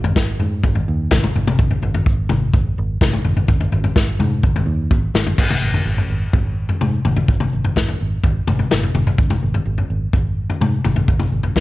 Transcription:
Already playing: fingered electric bass G#1
0.04 floor tom
0.16 fingered electric bass G#1, kick, snare
0.40 fingered electric bass G#2, floor tom
0.63 fingered electric bass G#1, kick, floor tom
0.75 floor tom
0.88 fingered electric bass D#2
1.11 fingered electric bass G#1, kick, snare, floor tom, mid tom
1.24 mid tom
1.35 fingered electric bass G#1, floor tom
1.47 floor tom, mid tom
1.59 fingered electric bass G#1, kick, floor tom
1.71 floor tom
1.82 fingered electric bass G#1, floor tom
1.94 floor tom
2.06 fingered electric bass G#1, kick
2.29 fingered electric bass G#1, floor tom, mid tom
2.53 fingered electric bass G#1, kick, floor tom
2.78 fingered electric bass G#1
3.01 fingered electric bass G#1, kick, snare, floor tom, mid tom
3.13 mid tom
3.25 fingered electric bass G#1, floor tom
3.37 floor tom
3.48 fingered electric bass G#1, kick, floor tom
3.61 floor tom
3.72 fingered electric bass G#1, floor tom
3.84 floor tom
3.96 fingered electric bass G#1, kick, snare
4.19 fingered electric bass G#2, floor tom, mid tom
4.43 fingered electric bass G#1, kick, floor tom
4.56 floor tom
4.66 fingered electric bass D#2
4.91 fingered electric bass G#1, kick, high tom
5.14 fingered electric bass G#1, snare
5.27 floor tom
5.38 fingered electric bass G#1, kick, floor tom, crash
5.50 floor tom, mid tom
5.61 fingered electric bass G#1
5.74 floor tom
5.85 fingered electric bass G#1
5.98 floor tom
6.08 fingered electric bass G#1
6.33 fingered electric bass G#1, kick, floor tom
6.69 floor tom
6.81 fingered electric bass G#2, mid tom
7.05 fingered electric bass G#1, floor tom, mid tom
7.17 floor tom
7.28 fingered electric bass G#1, kick, floor tom
7.40 floor tom, mid tom
7.53 fingered electric bass G#1
7.65 floor tom
7.76 fingered electric bass G#1, kick, snare
7.88 floor tom
8.01 fingered electric bass G#1
8.24 fingered electric bass G#1, kick, floor tom
8.47 fingered electric bass G#1, floor tom, mid tom
8.59 floor tom
8.71 fingered electric bass G#1, snare, mid tom
8.83 floor tom
8.95 fingered electric bass G#1, floor tom, mid tom
9.07 floor tom
9.18 fingered electric bass G#1, kick, floor tom
9.30 floor tom, mid tom
9.43 fingered electric bass G#1
9.54 floor tom
9.65 fingered electric bass G#1
9.78 floor tom
9.90 fingered electric bass G#1
10.13 fingered electric bass G#1, kick, floor tom
10.50 floor tom
10.61 fingered electric bass G#2, mid tom
10.84 fingered electric bass G#1, floor tom, mid tom
10.96 floor tom
11.08 fingered electric bass G#1, kick, floor tom
11.19 floor tom, mid tom
11.32 fingered electric bass G#1
11.43 floor tom
11.56 fingered electric bass G#1, kick, snare

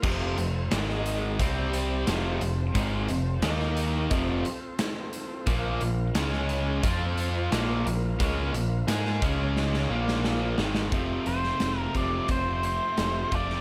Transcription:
0.03 picked electric bass F1, overdriven electric guitar F2 C3 F3, tonewheel organ C4 F4 A4 C5, kick, crash
0.37 picked electric bass F1, overdriven electric guitar F2 C3, closed hi-hat
0.71 picked electric bass G#1, overdriven electric guitar G#2 D#3 G#3, tonewheel organ G#3 D#4 G#4 D#5, snare, closed hi-hat
0.89 snare
1.06 closed hi-hat
1.38 picked electric bass C2, overdriven electric guitar C3 G3 C4, tonewheel organ G3 C4 G4 C5, kick, closed hi-hat
1.73 closed hi-hat
2.06 picked electric bass F1, overdriven electric guitar F2 C3 F3, tonewheel organ C4 F4 C5 A5, snare, closed hi-hat
2.41 picked electric bass F1, overdriven electric guitar F2 C3, closed hi-hat
2.74 picked electric bass G#1, overdriven electric guitar G#2 D#3 G#3, kick, closed hi-hat
3.08 picked electric bass F1, overdriven electric guitar F2 C3, closed hi-hat
3.42 picked electric bass D#2, overdriven electric guitar D#3 A#3 D#4, tonewheel organ A#3 D#4 A#4 D#5, snare, closed hi-hat
3.60 snare
3.77 closed hi-hat
4.11 picked electric bass F1, overdriven electric guitar F2 C3 F3, tonewheel organ C4 F4 A4 C5, kick, closed hi-hat
4.45 closed hi-hat
4.79 snare, closed hi-hat
5.13 closed hi-hat
5.46 picked electric bass A#1, overdriven electric guitar A#2 F3 A#3, tonewheel organ A#3 F4 A#4 F5, kick, closed hi-hat
5.81 picked electric bass A#1, overdriven electric guitar A#2 F3, closed hi-hat
6.14 picked electric bass C#2, overdriven electric guitar C#3 G#3 C#4, tonewheel organ C#4 G#4 C#5 G#5, snare, closed hi-hat
6.33 snare
6.49 closed hi-hat
6.83 picked electric bass F2, overdriven electric guitar F3 C4 F4, tonewheel organ C4 F4 C5 F5, kick, closed hi-hat
7.18 closed hi-hat
7.51 picked electric bass A#1, overdriven electric guitar A#2 F3 A#3, tonewheel organ A#3 F4 A#4 F5, snare, closed hi-hat
7.86 picked electric bass A#1, overdriven electric guitar A#2 F3, closed hi-hat
8.19 picked electric bass C#2, overdriven electric guitar C#3 G#3 C#4, kick, closed hi-hat
8.53 picked electric bass A#1, overdriven electric guitar A#2 F3, closed hi-hat
8.87 picked electric bass G#2, overdriven electric guitar G#3 D#4 G#4, snare, closed hi-hat
9.06 snare
9.22 picked electric bass C#2, overdriven electric guitar C#3 G#3 C#4, tonewheel organ C#4 G#4 C#5 G#5, kick, closed hi-hat
9.57 snare
9.74 snare
9.89 picked electric bass A#1, overdriven electric guitar A#2 F3 A#3, tonewheel organ A#3 F4 A#4 F5
10.08 snare
10.24 snare
10.58 picked electric bass G#1, overdriven electric guitar G#2 D#3 G#3, snare
10.75 snare
10.92 picked electric bass F1, overdriven electric guitar F2 C3 F3 A3 C4 F4, kick, closed hi-hat
11.25 picked electric bass F1, overdriven electric guitar F2 C3, lead electric guitar C5, closed hi-hat
11.44 snare
11.60 picked electric bass F1, overdriven electric guitar F2 C3, snare, closed hi-hat
11.80 lead electric guitar A#4
11.95 picked electric bass F1, overdriven electric guitar F2 C3 F3, lead electric guitar D5, kick, closed hi-hat
12.28 picked electric bass F1, overdriven electric guitar F2 C3, lead electric guitar C5, kick, closed hi-hat
12.63 overdriven electric guitar F2 C3, lead electric guitar C5, closed hi-hat
12.97 picked electric bass F1, overdriven electric guitar F2 C3 F3, snare, closed hi-hat
13.31 picked electric bass F1, overdriven electric guitar F2 C3 F3 A3 C4 F4, kick, closed hi-hat
13.36 lead electric guitar D5
13.50 snare

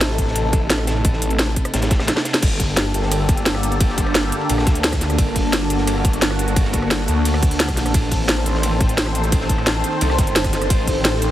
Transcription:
Already playing: detuned saw bass A1, analog synth pad C3 A3 D#4 A4
0.01 snare, closed hi-hat, ride
0.18 detuned saw bass A1, kick, closed hi-hat, ride
0.28 snare
0.35 closed hi-hat, ride
0.53 kick, closed hi-hat, ride
0.70 snare, closed hi-hat, ride
0.79 cross-stick, snare
0.87 snare, closed hi-hat, ride
0.97 ride
1.05 detuned saw bass A1, kick, closed hi-hat, ride
1.13 snare
1.22 closed hi-hat, ride
1.30 closed hi-hat, ride
1.39 snare, closed hi-hat, ride
1.56 kick, closed hi-hat, ride
1.65 cross-stick, closed hi-hat, ride
1.74 detuned saw bass A1, snare, closed hi-hat, ride
1.82 snare, closed hi-hat, ride
1.90 kick, snare, closed hi-hat, ride
1.99 cross-stick, snare, ride
2.08 snare, closed hi-hat, ride
2.16 snare, ride
2.25 snare, closed hi-hat, ride
2.34 snare, closed hi-hat, ride
2.42 detuned saw bass G1, analog synth pad D3 A#3 G4 A4, ambient pad D4, kick, closed hi-hat, crash, ride
2.54 ambient pad A#3
2.60 kick, closed hi-hat, open hi-hat
2.77 snare, closed hi-hat, ride
2.94 detuned saw bass G1, closed hi-hat, ride
3.03 snare
3.11 cross-stick, closed hi-hat, ride
3.29 kick, closed hi-hat, ride
3.37 closed hi-hat
3.45 snare, closed hi-hat, ride
3.55 cross-stick, snare
3.63 closed hi-hat, ride
3.71 closed hi-hat, ride
3.80 detuned saw bass G1, kick, closed hi-hat, ride
3.89 snare
3.98 kick, closed hi-hat, ride
4.06 cross-stick, ride
4.15 snare, closed hi-hat, ride
4.32 closed hi-hat, ride
4.41 ride
4.49 detuned saw bass A#1, closed hi-hat, ride
4.58 cross-stick, snare
4.67 detuned saw bass D2, kick, snare, closed hi-hat, ride
4.75 closed hi-hat
4.84 snare, closed hi-hat, ride
4.93 kick, cross-stick, snare, closed hi-hat
5.01 snare, closed hi-hat, ride
5.10 cross-stick, closed hi-hat
5.18 detuned saw bass G1, analog synth pad F#4, kick, closed hi-hat, ride
5.36 kick, closed hi-hat, open hi-hat
5.53 snare, closed hi-hat, ride
5.70 detuned saw bass G1, closed hi-hat, ride
5.78 snare
5.87 cross-stick, closed hi-hat, ride
6.05 kick, closed hi-hat, ride
6.13 closed hi-hat
6.22 snare, closed hi-hat, ride
6.30 cross-stick, snare
6.39 closed hi-hat, ride
6.48 closed hi-hat, ride
6.56 detuned saw bass G1, kick, closed hi-hat, ride
6.64 snare
6.73 kick, closed hi-hat, ride
6.82 cross-stick, ride
6.91 snare, closed hi-hat, ride
7.07 detuned saw bass D2, closed hi-hat, ride
7.25 closed hi-hat, open hi-hat, ride
7.34 cross-stick, ride
7.43 kick, closed hi-hat
7.51 closed hi-hat, open hi-hat
7.60 snare, closed hi-hat, ride
7.68 kick, cross-stick, closed hi-hat
7.76 snare, closed hi-hat, open hi-hat
7.86 cross-stick, closed hi-hat
7.94 detuned saw bass A1, analog synth pad D#3 C4 C5, ambient pad D#4, kick, closed hi-hat, ride
8.04 ambient pad A4
8.11 kick, closed hi-hat, open hi-hat
8.28 ambient pad C5, snare, closed hi-hat, ride
8.39 ambient pad A5
8.46 detuned saw bass A1, closed hi-hat, ride
8.55 snare
8.63 cross-stick, closed hi-hat, ride
8.80 kick, closed hi-hat, ride
8.89 closed hi-hat
8.97 snare, closed hi-hat, ride
9.06 cross-stick, snare
9.15 closed hi-hat, ride
9.24 closed hi-hat, ride
9.32 detuned saw bass A1, kick, closed hi-hat, ride
9.40 snare
9.49 kick, closed hi-hat, ride
9.58 cross-stick, ride
9.67 snare, closed hi-hat, ride
9.84 closed hi-hat, ride
9.93 ride
10.01 detuned saw bass C2, closed hi-hat, ride
10.10 cross-stick, snare
10.18 detuned saw bass G1, kick, snare, closed hi-hat, ride
10.27 closed hi-hat
10.35 snare, closed hi-hat, ride
10.44 kick, cross-stick, snare, closed hi-hat
10.53 snare, closed hi-hat, ride
10.62 cross-stick, closed hi-hat
10.70 detuned saw bass A1, analog synth pad G4, kick, closed hi-hat, ride
10.87 kick, closed hi-hat, open hi-hat
11.05 snare, closed hi-hat, ride
11.22 detuned saw bass A1, closed hi-hat, ride

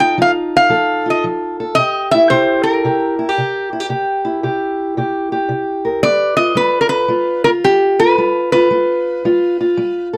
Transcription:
Already playing: steel-string acoustic guitar F3 F4 A4
0.00 steel-string acoustic guitar D#4, resonator guitar played with a steel bar G5
0.18 steel-string acoustic guitar F3 F4
0.22 resonator guitar played with a steel bar F5
0.57 resonator guitar played with a steel bar F5
0.69 steel-string acoustic guitar F3 A4
1.06 steel-string acoustic guitar F4
1.10 resonator guitar played with a steel bar D#5
1.24 steel-string acoustic guitar F3
1.60 steel-string acoustic guitar A4
1.75 steel-string acoustic guitar C3 G4, resonator guitar played with a steel bar D#5
2.11 steel-string acoustic guitar E4, resonator guitar played with a steel bar E5
2.30 steel-string acoustic guitar C3 G4, resonator guitar played with a steel bar C5
2.63 resonator guitar played with a steel bar A#4
2.84 steel-string acoustic guitar C3 G4
3.19 steel-string acoustic guitar E4
3.29 steel-string acoustic guitar G4
3.38 steel-string acoustic guitar C3
3.73 steel-string acoustic guitar E4
3.80 steel-string acoustic guitar G4
3.89 steel-string acoustic guitar C3 G4
4.25 steel-string acoustic guitar E4
4.43 steel-string acoustic guitar C3 G4
4.97 steel-string acoustic guitar C3 G4
5.32 steel-string acoustic guitar G4
5.49 steel-string acoustic guitar C3
5.85 steel-string acoustic guitar A#4
6.03 steel-string acoustic guitar G3 B4, resonator guitar played with a steel bar D5
6.37 steel-string acoustic guitar F4, resonator guitar played with a steel bar D#5
6.55 steel-string acoustic guitar G3 F4, resonator guitar played with a steel bar B4
6.81 resonator guitar played with a steel bar A#4
6.89 resonator guitar played with a steel bar B4
7.08 steel-string acoustic guitar G3 F4
7.44 steel-string acoustic guitar F4, resonator guitar played with a steel bar A#4
7.64 steel-string acoustic guitar G3, resonator guitar played with a steel bar G4
8.00 steel-string acoustic guitar F4, resonator guitar played with a steel bar B4
8.18 steel-string acoustic guitar G3 F4
8.52 steel-string acoustic guitar F4, resonator guitar played with a steel bar B4
8.70 steel-string acoustic guitar G3 F4
9.25 steel-string acoustic guitar G3 F4
9.61 steel-string acoustic guitar F4
9.77 steel-string acoustic guitar G3
10.13 steel-string acoustic guitar A4

